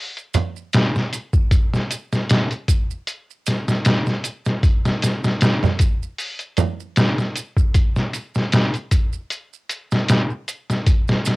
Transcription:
0.17 closed hi-hat soft
0.17 maracas soft
0.34 closed hi-hat medium
0.34 low conga medium
0.34 maracas medium
0.56 maracas soft
0.73 snare loud
0.73 closed hi-hat medium
0.73 maracas medium
0.95 snare soft
0.95 maracas soft
1.13 closed hi-hat medium
1.13 maracas medium
1.33 kick medium
1.33 maracas soft
1.51 kick loud
1.51 closed hi-hat medium
1.51 maracas medium
1.74 snare soft
1.74 maracas soft
1.91 closed hi-hat medium
1.91 maracas loud
2.12 snare soft
2.12 maracas soft
2.30 snare loud
2.30 closed hi-hat medium
2.30 maracas medium
2.51 closed hi-hat soft
2.51 maracas soft
2.68 kick medium
2.68 closed hi-hat medium
2.68 maracas loud
2.91 maracas soft
3.07 closed hi-hat medium
3.07 maracas medium
3.30 maracas soft
3.46 snare soft
3.46 closed hi-hat medium
3.46 maracas medium
3.68 snare medium
3.68 maracas soft
3.85 snare loud
3.85 closed hi-hat medium
3.85 maracas medium
4.06 snare soft
4.06 maracas soft
4.24 closed hi-hat medium
4.24 maracas loud
4.45 snare soft
4.45 maracas soft
4.63 kick loud
4.63 closed hi-hat medium
4.63 maracas medium
4.85 snare medium
4.85 maracas soft
5.02 snare medium
5.02 closed hi-hat medium
5.02 maracas loud
5.24 snare medium
5.24 maracas soft
5.41 snare loud
5.41 closed hi-hat medium
5.41 maracas medium
5.63 snare soft
5.63 low conga medium
5.63 maracas soft
5.79 kick loud
5.79 closed hi-hat medium
5.79 maracas loud
6.03 maracas soft
6.18 open hi-hat medium
6.18 maracas soft
6.39 closed hi-hat soft
6.39 maracas soft
6.57 closed hi-hat medium
6.57 low conga medium
6.57 maracas medium
6.80 maracas soft
6.96 snare loud
6.96 closed hi-hat medium
6.96 maracas soft
7.18 snare soft
7.18 maracas soft
7.35 closed hi-hat medium
7.35 maracas loud
7.57 kick medium
7.57 maracas soft
7.74 kick loud
7.74 closed hi-hat medium
7.74 maracas medium
7.96 snare soft
7.96 maracas soft
8.13 closed hi-hat medium
8.13 maracas loud
8.35 snare soft
8.35 maracas soft
8.52 snare loud
8.52 closed hi-hat medium
8.52 maracas medium
8.74 closed hi-hat soft
8.74 maracas soft
8.91 kick medium
8.91 closed hi-hat medium
8.91 maracas loud
9.13 maracas soft
9.30 closed hi-hat medium
9.30 maracas soft
9.53 maracas soft
9.69 closed hi-hat medium
9.69 maracas medium
9.91 snare medium
9.91 maracas soft
10.08 snare loud
10.08 closed hi-hat medium
10.08 maracas medium
10.30 maracas soft
10.48 closed hi-hat medium
10.48 maracas loud
10.70 snare soft
10.70 maracas soft
10.87 kick loud
10.87 closed hi-hat medium
10.87 maracas medium
11.08 snare medium
11.08 maracas soft
11.25 snare medium
11.25 closed hi-hat medium
11.25 maracas loud

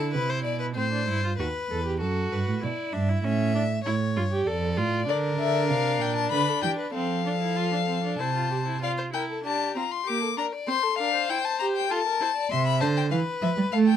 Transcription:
0.00 0.16 D3 medium
0.00 0.76 E4 medium
0.00 0.13 A4 medium
0.14 0.46 C3 medium
0.14 0.31 B4 medium
0.30 0.44 C5 medium
0.44 0.78 B2 medium
0.44 0.59 D5 medium
0.59 0.66 B4 medium
0.75 1.09 A2 medium
0.75 0.91 C4 medium
0.75 1.37 C5 medium
0.92 1.07 D4 medium
1.08 1.38 G2 medium
1.08 1.24 E4 medium
1.24 1.30 F4 medium
1.38 1.47 D#2 medium
1.38 1.47 F#4 medium
1.38 1.97 B4 medium
1.70 2.03 E2 medium
1.70 1.85 A4 medium
1.86 2.01 G4 medium
2.00 2.31 F#2 medium
2.00 2.62 F#4 medium
2.00 2.33 A4 medium
2.32 2.47 G2 medium
2.32 2.64 B4 medium
2.48 2.54 A2 medium
2.63 2.71 B2 medium
2.63 2.95 E4 medium
2.63 2.94 D5 medium
2.92 3.24 G2 medium
2.92 3.10 D4 medium
2.92 3.22 E5 medium
3.09 3.26 E4 medium
3.23 3.84 A2 medium
3.23 3.54 C#4 medium
3.23 3.84 E5 medium
3.55 3.63 D4 medium
3.84 4.17 A2 medium
3.84 3.94 E4 medium
3.84 4.45 C#5 medium
4.16 4.47 G2 medium
4.16 4.23 F4 medium
4.31 4.49 G4 medium
4.47 4.79 F2 medium
4.47 4.79 A4 medium
4.47 5.10 D5 medium
4.77 5.10 A2 medium
4.77 5.08 F4 medium
5.08 5.38 D3 medium
5.08 6.90 D4 medium
5.08 6.32 A#4 medium
5.08 5.17 D5 medium
5.39 5.72 D3 medium
5.39 5.68 E5 medium
5.69 6.01 C3 medium
5.69 6.02 F5 medium
6.00 6.31 A#2 medium
6.00 6.16 G5 medium
6.16 6.31 A5 medium
6.31 6.39 D3 medium
6.31 6.50 B4 medium
6.31 6.62 B5 medium
6.49 6.62 A4 medium
6.62 6.71 E3 medium
6.62 6.78 G4 medium
6.62 6.70 G5 medium
6.79 6.94 B4 medium
6.93 8.17 F3 medium
6.93 7.25 C4 medium
6.93 8.21 A4 medium
6.93 8.17 F5 medium
7.26 7.32 D4 medium
7.42 7.58 E4 medium
7.57 7.72 F4 medium
7.72 7.79 D4 soft
7.88 8.03 C4 medium
8.04 8.21 D4 medium
8.19 8.81 C3 medium
8.19 8.34 E4 medium
8.19 8.82 C5 medium
8.19 8.81 A5 medium
8.35 8.50 F4 medium
8.51 8.57 G4 medium
8.66 8.82 E4 medium
8.82 9.11 F4 medium
8.82 8.88 D5 medium
8.82 8.91 F5 medium
8.97 9.04 C5 medium
9.13 9.44 E4 medium
9.13 9.29 A#4 medium
9.13 9.22 G5 medium
9.30 9.45 A4 medium
9.44 9.75 D4 medium
9.44 9.78 G4 medium
9.44 9.75 A5 medium
9.76 9.84 C4 medium
9.76 10.06 F4 medium
9.76 9.93 A#5 medium
9.91 10.08 C6 medium
10.06 10.37 A#3 medium
10.06 10.21 G4 medium
10.06 10.37 D6 medium
10.21 10.28 A4 medium
10.37 10.45 D4 medium
10.37 10.54 A#4 medium
10.37 10.46 A#5 medium
10.52 10.69 D5 medium
10.67 10.75 C4 medium
10.67 10.84 C5 medium
10.67 10.98 C6 medium
10.83 11.00 A4 medium
10.98 11.29 D4 medium
10.98 11.13 A#4 medium
10.98 11.30 F5 medium
11.14 11.89 C5 medium
11.29 11.37 E4 medium
11.29 11.46 G5 medium
11.44 11.59 A5 medium
11.59 11.89 G4 medium
11.59 11.66 A#5 medium
11.76 11.92 G5 medium
11.90 11.98 F4 medium
11.90 12.06 A4 medium
11.90 12.51 A5 medium
12.07 12.23 A#4 medium
12.21 12.29 E4 medium
12.21 12.36 C5 medium
12.37 12.53 D5 medium
12.51 12.83 C3 medium
12.51 12.82 E5 medium
12.51 12.66 C6 medium
12.67 12.80 B5 medium
12.81 13.11 D3 medium
12.81 13.12 C5 medium
12.81 12.87 A5 medium
12.97 13.03 G5 medium
13.11 13.20 E3 medium
13.11 13.75 B4 medium
13.11 13.19 F5 medium
13.42 13.48 F3 medium
13.42 13.50 E5 medium
13.57 13.63 G3 medium
13.72 13.97 A3 loud
13.72 13.97 A4 medium
13.72 13.78 F5 medium
13.87 13.97 G5 medium

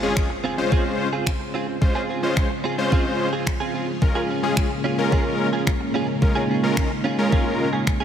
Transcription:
0.00 8.04 C#3 medium
0.00 8.04 G#3 medium
0.00 0.28 G#3 medium
0.00 0.28 C#4 medium
0.00 6.18 F4 medium
0.00 0.28 F4 medium
0.00 0.28 G#4 medium
0.00 3.98 C5 medium
0.00 muted clean electric guitar stroke soft
0.00 impact medium
0.17 finger snap loud
0.17 kick loud
0.30 muted clean electric guitar stroke medium
0.44 0.64 C4 medium
0.44 0.58 F4 medium
0.44 0.56 G#4 loud
0.58 1.08 G#3 medium
0.58 1.08 C#4 medium
0.58 1.08 F4 medium
0.58 1.08 C5 loud
0.58 muted clean electric guitar stroke soft
0.71 0.92 C4 medium
0.71 0.85 F4 medium
0.71 0.84 G#4 medium
0.71 kick loud
0.85 muted clean electric guitar stroke soft
0.99 muted clean electric guitar stroke soft
1.13 1.29 C4 soft
1.13 1.29 F4 medium
1.13 1.29 G#4 medium
1.27 finger snap loud
1.27 kick medium
1.40 muted clean electric guitar stroke medium
1.54 1.74 C4 medium
1.54 1.68 F4 medium
1.54 1.67 G#4 medium
1.68 muted clean electric guitar stroke soft
1.81 2.00 G#3 medium
1.81 2.00 C#4 medium
1.81 2.01 F4 medium
1.81 2.01 C5 medium
1.81 muted clean electric guitar stroke soft
1.81 kick loud
1.95 2.08 C4 medium
1.95 2.09 F4 medium
1.95 2.09 G#4 medium
2.09 2.25 C4 medium
2.09 2.23 F4 medium
2.09 2.22 G#4 medium
2.23 2.48 G#3 medium
2.23 2.48 C#4 medium
2.23 2.48 F4 medium
2.23 2.48 C5 medium
2.23 muted clean electric guitar stroke soft
2.37 finger snap loud
2.37 kick loud
2.50 muted clean electric guitar stroke soft
2.64 2.84 C4 medium
2.64 2.78 F4 medium
2.64 2.77 G#4 loud
2.78 3.28 G#3 medium
2.78 3.28 C#4 medium
2.78 3.28 F4 medium
2.78 3.28 C5 loud
2.78 muted clean electric guitar stroke soft
2.91 3.12 C4 medium
2.91 3.05 F4 medium
2.91 3.04 G#4 medium
2.91 kick loud
3.05 muted clean electric guitar stroke soft
3.19 muted clean electric guitar stroke soft
3.33 3.45 C4 soft
3.33 3.46 F4 medium
3.33 3.47 G#4 medium
3.47 finger snap loud
3.47 kick medium
3.60 3.73 C4 medium
3.60 3.74 F4 medium
3.60 3.74 G#4 medium
3.74 3.90 C4 medium
3.74 3.88 F4 medium
3.74 3.87 G#4 medium
3.88 muted clean electric guitar stroke soft
4.02 4.21 G#3 medium
4.02 8.04 A#3 medium
4.02 4.21 C#4 medium
4.02 4.21 F4 medium
4.02 4.21 A#4 medium
4.02 muted clean electric guitar stroke soft
4.02 kick loud
4.15 4.28 C#4 medium
4.15 4.29 F4 medium
4.15 4.29 G#4 medium
4.29 4.45 C#4 medium
4.29 4.43 F4 medium
4.29 4.42 G#4 medium
4.43 4.68 G#3 medium
4.43 4.68 C#4 medium
4.43 4.68 F4 medium
4.43 4.68 G#4 medium
4.43 muted clean electric guitar stroke medium
4.57 finger snap loud
4.57 kick loud
4.70 muted clean electric guitar stroke soft
4.84 5.05 C#4 medium
4.84 4.98 F4 medium
4.84 4.97 G#4 medium
4.98 5.48 G#3 medium
4.98 5.48 C#4 medium
4.98 5.48 F4 medium
4.98 5.49 A#4 loud
4.98 muted clean electric guitar stroke soft
5.12 5.32 C#4 medium
5.12 5.25 F4 medium
5.12 5.24 G#4 loud
5.12 kick loud
5.25 muted clean electric guitar stroke soft
5.39 muted clean electric guitar stroke soft
5.53 5.70 C#4 medium
5.53 5.69 F4 medium
5.53 5.69 G#4 medium
5.67 finger snap loud
5.67 kick medium
5.81 muted clean electric guitar stroke medium
5.94 6.15 C#4 medium
5.94 6.08 F4 medium
5.94 6.07 G#4 loud
6.08 muted clean electric guitar stroke soft
6.22 6.41 G#3 medium
6.22 6.41 C#4 medium
6.22 8.04 D#4 medium
6.22 6.41 F4 medium
6.22 6.41 A#4 medium
6.22 muted clean electric guitar stroke soft
6.22 kick loud
6.35 6.48 C#4 medium
6.35 6.49 F4 medium
6.35 6.50 G#4 medium
6.49 6.65 C#4 medium
6.49 6.63 F4 medium
6.49 6.62 G#4 medium
6.63 6.88 G#3 medium
6.63 6.88 C#4 medium
6.63 6.89 F4 medium
6.63 6.89 A#4 loud
6.63 muted clean electric guitar stroke soft
6.77 finger snap loud
6.77 kick loud
6.91 muted clean electric guitar stroke soft
7.04 7.25 C#4 medium
7.04 7.18 F4 medium
7.04 7.17 G#4 medium
7.18 7.68 G#3 medium
7.18 7.69 C#4 medium
7.18 7.69 F4 medium
7.18 7.69 A#4 loud
7.18 muted clean electric guitar stroke soft
7.32 7.52 C#4 medium
7.32 7.45 F4 medium
7.32 7.44 G#4 medium
7.32 kick loud
7.45 muted clean electric guitar stroke soft
7.59 muted clean electric guitar stroke soft
7.73 7.85 C#4 soft
7.73 7.86 F4 medium
7.73 7.87 G#4 medium
7.87 finger snap loud
7.87 muted clean electric guitar stroke soft
7.87 kick loud
8.00 8.04 F4 medium
8.00 8.04 G#4 medium

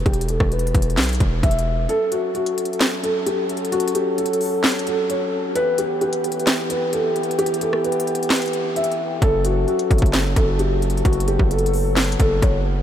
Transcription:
0.06 0.39 E1 loud
0.06 0.25 G4 loud
0.06 kick loud
0.06 closed hi-hat medium
0.13 closed hi-hat medium
0.21 closed hi-hat medium
0.28 0.48 A4 medium
0.28 closed hi-hat medium
0.40 0.73 E1 loud
0.40 kick medium
0.40 cross-stick loud
0.52 1.39 B4 medium
0.52 closed hi-hat soft
0.59 closed hi-hat medium
0.67 closed hi-hat medium
0.75 0.99 E1 loud
0.75 kick medium
0.75 closed hi-hat medium
0.82 closed hi-hat medium
0.90 closed hi-hat medium
0.97 1.19 B1 loud
0.97 snare loud
0.97 clap medium
0.97 closed hi-hat medium
1.03 closed hi-hat medium
1.05 closed hi-hat soft
1.09 closed hi-hat medium
1.13 closed hi-hat soft
1.15 closed hi-hat medium
1.20 1.42 E1 loud
1.20 kick medium
1.20 closed hi-hat medium
1.43 1.87 E1 loud
1.43 1.86 E5 medium
1.43 kick loud
1.43 closed hi-hat medium
1.51 closed hi-hat medium
1.59 closed hi-hat medium
1.89 5.52 F#3 medium
1.89 5.52 C#4 medium
1.89 2.08 A4 loud
1.89 5.52 A4 medium
1.89 closed hi-hat medium
2.12 2.31 F#4 medium
2.12 closed hi-hat medium
2.35 3.00 F#4 medium
2.35 closed hi-hat soft
2.46 closed hi-hat medium
2.58 closed hi-hat medium
2.65 closed hi-hat medium
2.73 closed hi-hat soft
2.81 snare loud
2.81 clap medium
2.81 closed hi-hat medium
3.04 3.22 A4 medium
3.04 closed hi-hat medium
3.26 3.45 G4 medium
3.26 closed hi-hat medium
3.49 closed hi-hat soft
3.57 closed hi-hat medium
3.65 closed hi-hat medium
3.72 3.91 F#4 loud
3.72 closed hi-hat medium
3.80 closed hi-hat medium
3.88 closed hi-hat medium
3.95 4.14 G4 medium
3.95 closed hi-hat medium
4.18 4.83 A4 medium
4.18 closed hi-hat medium
4.26 closed hi-hat medium
4.33 closed hi-hat medium
4.41 open hi-hat medium
4.64 snare loud
4.64 clap medium
4.64 closed hi-hat medium
4.72 closed hi-hat medium
4.79 closed hi-hat medium
4.87 5.06 A4 medium
4.87 closed hi-hat medium
5.10 5.29 C#5 medium
5.10 closed hi-hat medium
5.55 9.18 E3 medium
5.55 9.18 B3 medium
5.55 9.18 G4 medium
5.55 5.74 B4 loud
5.55 closed hi-hat medium
5.78 5.97 G4 medium
5.78 closed hi-hat medium
6.01 6.66 G4 medium
6.01 closed hi-hat soft
6.13 closed hi-hat medium
6.24 closed hi-hat medium
6.32 closed hi-hat medium
6.39 closed hi-hat soft
6.47 snare loud
6.47 clap medium
6.47 closed hi-hat medium
6.70 6.89 B4 medium
6.70 closed hi-hat medium
6.93 7.12 A4 medium
6.93 closed hi-hat medium
7.16 closed hi-hat soft
7.23 closed hi-hat medium
7.31 closed hi-hat medium
7.39 7.57 G4 loud
7.39 closed hi-hat medium
7.46 closed hi-hat medium
7.54 closed hi-hat medium
7.61 7.80 A4 medium
7.61 closed hi-hat medium
7.73 cross-stick medium
7.84 8.72 B4 medium
7.84 closed hi-hat soft
7.92 closed hi-hat medium
8.00 closed hi-hat medium
8.07 closed hi-hat medium
8.15 closed hi-hat medium
8.23 closed hi-hat medium
8.30 snare loud
8.30 clap medium
8.30 closed hi-hat medium
8.36 closed hi-hat medium
8.38 closed hi-hat soft
8.42 closed hi-hat medium
8.46 closed hi-hat soft
8.48 closed hi-hat medium
8.53 closed hi-hat medium
8.76 9.19 E5 medium
8.76 closed hi-hat medium
8.84 closed hi-hat medium
8.92 closed hi-hat medium
9.22 9.66 F#1 loud
9.22 12.82 F#3 medium
9.22 11.03 C#4 medium
9.22 9.41 A4 loud
9.22 12.82 A4 medium
9.22 kick loud
9.22 closed hi-hat medium
9.45 9.64 F#4 medium
9.45 closed hi-hat medium
9.68 10.32 F#4 medium
9.68 closed hi-hat soft
9.79 closed hi-hat medium
9.91 10.02 F#1 loud
9.91 kick medium
9.91 closed hi-hat medium
9.98 10.35 F#1 loud
9.98 kick medium
9.98 closed hi-hat medium
10.06 closed hi-hat soft
10.13 snare loud
10.13 clap medium
10.13 closed hi-hat medium
10.36 11.02 F#1 loud
10.36 10.55 A4 medium
10.36 kick medium
10.36 closed hi-hat medium
10.59 10.78 G4 medium
10.59 closed hi-hat medium
10.82 closed hi-hat soft
10.90 closed hi-hat medium
10.97 closed hi-hat medium
11.05 11.38 F#1 loud
11.05 12.82 B3 medium
11.05 11.24 F#4 loud
11.05 kick loud
11.05 closed hi-hat medium
11.13 closed hi-hat medium
11.20 closed hi-hat medium
11.28 11.47 G4 medium
11.28 closed hi-hat medium
11.39 12.16 F#1 loud
11.39 kick medium
11.51 12.16 A4 medium
11.51 closed hi-hat medium
11.59 closed hi-hat medium
11.66 closed hi-hat medium
11.73 open hi-hat medium
11.97 snare loud
11.97 clap medium
11.97 closed hi-hat medium
12.04 closed hi-hat medium
12.12 closed hi-hat medium
12.20 12.42 F#1 loud
12.20 12.38 A4 medium
12.20 kick medium
12.20 closed hi-hat medium
12.42 12.82 F#1 loud
12.42 12.61 C#5 medium
12.42 kick loud
12.42 closed hi-hat medium

